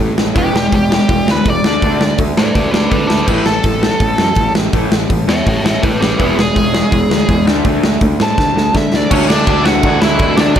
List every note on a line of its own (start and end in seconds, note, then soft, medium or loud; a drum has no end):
0.00 0.12 A2 medium
0.00 0.15 A2 medium
0.00 0.15 E3 medium
0.18 0.30 A1 medium
0.18 0.34 A2 medium
0.18 0.33 E3 medium
0.18 snare loud
0.34 0.48 E1 loud
0.34 0.51 E3 medium
0.34 0.52 G#3 medium
0.34 0.53 B3 loud
0.34 0.55 G4 medium
0.34 kick loud
0.34 open hi-hat medium
0.53 0.66 E1 medium
0.53 0.70 E3 medium
0.53 0.70 G#3 medium
0.53 0.73 G4 medium
0.53 snare loud
0.72 0.97 E1 loud
0.72 0.89 E3 medium
0.72 0.89 G#3 medium
0.72 0.92 G4 medium
0.72 kick loud
0.72 open hi-hat medium
0.90 1.07 E3 medium
0.90 1.07 G#3 medium
0.90 1.28 G4 medium
0.90 snare loud
1.09 1.21 E1 medium
1.09 1.25 E3 medium
1.09 1.26 G#3 medium
1.09 kick loud
1.09 open hi-hat medium
1.26 1.39 D2 medium
1.26 1.45 E3 medium
1.26 1.45 G#3 medium
1.26 snare loud
1.31 1.48 B4 loud
1.45 1.58 E1 medium
1.45 1.62 E3 medium
1.45 1.63 G#3 medium
1.45 2.18 D5 medium
1.45 kick loud
1.45 open hi-hat medium
1.64 1.77 D2 medium
1.64 1.81 D3 medium
1.64 1.82 A3 medium
1.64 1.82 D4 loud
1.64 snare loud
1.82 1.95 D2 loud
1.82 2.00 D3 medium
1.82 2.00 A3 medium
1.82 2.01 D4 loud
1.82 kick loud
1.82 open hi-hat medium
2.01 2.13 D2 medium
2.01 2.17 D3 medium
2.01 2.17 A3 medium
2.01 snare loud
2.18 2.31 D2 medium
2.18 2.35 D3 medium
2.18 2.36 A3 medium
2.18 kick loud
2.18 open hi-hat medium
2.37 2.50 A2 medium
2.37 2.54 D3 medium
2.37 2.54 A3 medium
2.37 2.53 B4 medium
2.37 2.54 D5 medium
2.37 snare loud
2.54 2.68 D2 medium
2.54 2.72 D3 medium
2.54 2.72 A3 medium
2.54 2.70 B4 medium
2.54 2.71 D5 medium
2.54 kick loud
2.54 open hi-hat medium
2.71 2.86 D2 medium
2.71 2.90 D3 medium
2.71 2.91 A3 medium
2.71 2.89 B4 medium
2.71 2.91 D5 medium
2.71 snare loud
2.90 3.04 D3 medium
2.90 3.08 D3 medium
2.90 3.09 A3 medium
2.90 3.06 D4 medium
2.90 3.07 B4 medium
2.90 kick loud
2.90 open hi-hat medium
3.07 3.23 D2 medium
3.07 3.27 D3 medium
3.07 3.27 A3 medium
3.07 3.26 D4 medium
3.07 3.26 B4 medium
3.07 snare loud
3.27 3.40 A1 loud
3.27 3.45 A2 medium
3.27 3.46 E3 loud
3.27 3.46 A3 loud
3.27 3.44 G4 medium
3.27 3.46 B4 medium
3.27 kick loud
3.27 crash loud
3.46 3.59 A1 medium
3.46 3.63 A2 medium
3.46 3.63 E3 medium
3.46 4.52 A4 loud
3.46 snare loud
3.64 3.89 A1 loud
3.64 3.81 A2 medium
3.64 3.81 E3 medium
3.64 kick loud
3.64 open hi-hat medium
3.83 3.99 A2 medium
3.83 4.00 E3 medium
3.83 snare loud
4.00 4.13 A1 medium
4.00 4.18 A2 medium
4.00 4.18 E3 medium
4.00 kick loud
4.00 open hi-hat medium
4.18 4.31 F#2 medium
4.18 4.36 A2 medium
4.18 4.36 E3 medium
4.18 snare loud
4.35 4.49 A1 medium
4.35 4.54 A2 medium
4.35 4.55 E3 medium
4.35 kick loud
4.35 open hi-hat medium
4.54 4.67 A1 medium
4.54 4.72 A2 medium
4.54 4.72 E3 medium
4.54 snare loud
4.73 4.86 A1 loud
4.73 4.90 A2 medium
4.73 4.89 E3 medium
4.73 4.91 A3 loud
4.73 kick loud
4.73 open hi-hat medium
4.90 5.04 A1 medium
4.90 5.08 A2 medium
4.90 5.08 E3 medium
4.90 snare loud
5.09 5.23 A1 medium
5.09 5.26 A2 medium
5.09 5.27 E3 medium
5.09 kick loud
5.09 open hi-hat medium
5.27 5.40 E2 medium
5.27 5.45 A2 medium
5.27 5.45 E3 medium
5.27 5.47 C#5 medium
5.27 5.47 E5 medium
5.27 snare loud
5.46 5.59 A1 medium
5.46 5.63 A2 medium
5.46 5.63 E3 medium
5.46 5.64 C#5 medium
5.46 5.64 E5 medium
5.46 kick loud
5.46 open hi-hat medium
5.64 5.77 A1 loud
5.64 5.81 A2 medium
5.64 5.81 E3 medium
5.64 5.82 C#5 medium
5.64 5.83 E5 medium
5.64 snare loud
5.82 5.99 A2 medium
5.82 5.96 A2 medium
5.82 5.99 E3 medium
5.82 6.00 G4 medium
5.82 6.00 B4 medium
5.82 kick loud
5.82 open hi-hat medium
6.01 6.14 A1 medium
6.01 6.18 A2 medium
6.01 6.17 E3 medium
6.01 6.18 G4 medium
6.01 6.19 B4 medium
6.01 snare loud
6.18 6.32 E1 medium
6.18 6.35 E3 loud
6.18 6.36 G#3 medium
6.18 6.37 B3 loud
6.18 6.37 G#4 medium
6.18 6.38 B4 loud
6.18 kick loud
6.18 open hi-hat medium
6.36 6.51 E1 medium
6.36 6.54 E3 medium
6.36 6.54 G#3 medium
6.36 7.45 G#4 loud
6.36 snare loud
6.55 6.81 E1 loud
6.55 6.72 E3 medium
6.55 6.72 G#3 medium
6.55 kick loud
6.55 open hi-hat medium
6.73 6.90 E3 medium
6.73 6.90 G#3 medium
6.73 snare loud
6.91 7.05 E1 loud
6.91 7.08 E3 medium
6.91 7.08 G#3 medium
6.91 kick loud
6.91 open hi-hat medium
7.10 7.23 D2 medium
7.10 7.27 E3 medium
7.10 7.27 G#3 medium
7.10 snare loud
7.28 7.47 E2 medium
7.28 7.45 E3 medium
7.28 7.45 G#3 medium
7.28 kick loud
7.28 open hi-hat medium
7.46 7.60 D2 medium
7.46 7.63 D3 medium
7.46 7.64 A3 medium
7.46 7.64 D4 loud
7.46 snare loud
7.65 7.77 D2 medium
7.65 7.82 D3 medium
7.65 7.83 A3 medium
7.65 7.83 D4 loud
7.65 kick loud
7.65 open hi-hat medium
7.84 7.96 D2 medium
7.84 8.01 D3 medium
7.84 8.00 A3 medium
7.84 snare loud
8.01 8.14 D2 medium
8.01 8.18 D3 medium
8.01 8.18 A3 medium
8.01 kick loud
8.01 open hi-hat medium
8.20 8.33 A2 medium
8.20 8.37 D3 medium
8.20 8.37 A3 medium
8.20 8.74 A5 loud
8.20 snare loud
8.38 8.50 D2 medium
8.38 8.54 D3 medium
8.38 8.55 A3 medium
8.38 kick loud
8.38 snare medium
8.56 8.68 D2 medium
8.56 8.72 D3 medium
8.56 8.73 A3 medium
8.56 snare medium
8.73 8.90 D3 medium
8.73 8.87 D3 medium
8.73 8.91 A3 medium
8.73 8.96 E5 medium
8.73 kick loud
8.73 snare medium
8.92 9.06 D2 medium
8.92 9.09 D3 medium
8.92 9.09 A3 medium
8.92 9.12 D5 loud
8.92 snare medium
9.10 9.28 D2 medium
9.10 9.29 D3 medium
9.10 9.30 F#3 loud
9.10 9.30 A3 loud
9.10 9.28 C#4 medium
9.10 9.31 D4 loud
9.10 9.31 C#5 loud
9.10 kick loud
9.10 crash loud
9.10 crash medium
9.28 9.46 D2 medium
9.28 9.47 D3 medium
9.28 9.47 F#3 medium
9.28 9.48 A3 loud
9.28 9.62 D4 medium
9.28 9.48 D4 loud
9.28 9.67 D5 loud
9.28 snare loud
9.47 9.64 D2 loud
9.47 9.64 D3 medium
9.47 9.65 F#3 loud
9.47 9.66 A3 loud
9.47 9.67 D4 loud
9.47 kick loud
9.47 crash medium
9.65 9.82 D2 loud
9.65 9.83 D3 medium
9.65 9.83 F#3 medium
9.65 9.84 A3 loud
9.65 9.85 D4 loud
9.65 9.99 F#4 medium
9.65 10.02 F#5 loud
9.65 snare loud
9.83 10.00 D2 loud
9.83 10.01 D3 medium
9.83 10.02 F#3 medium
9.83 10.02 A3 medium
9.83 10.04 D4 medium
9.83 kick loud
9.83 crash medium
10.01 10.19 D2 medium
10.01 10.18 D3 loud
10.01 10.19 F#3 loud
10.01 10.20 A3 loud
10.01 10.21 D4 loud
10.01 10.35 E4 medium
10.01 10.36 E5 loud
10.01 snare loud
10.19 10.37 D2 medium
10.19 10.37 D3 loud
10.19 10.38 F#3 medium
10.19 10.39 A3 loud
10.19 10.40 D4 loud
10.19 kick loud
10.19 crash medium
10.37 10.55 D2 medium
10.37 10.54 D3 medium
10.37 10.55 F#3 medium
10.37 10.55 A3 medium
10.37 10.54 D4 medium
10.37 10.56 D4 loud
10.37 10.57 D5 loud
10.37 snare loud
10.55 10.60 D2 loud
10.55 10.60 D3 medium
10.55 10.60 F#3 loud
10.55 10.60 A3 loud
10.55 kick loud
10.55 crash medium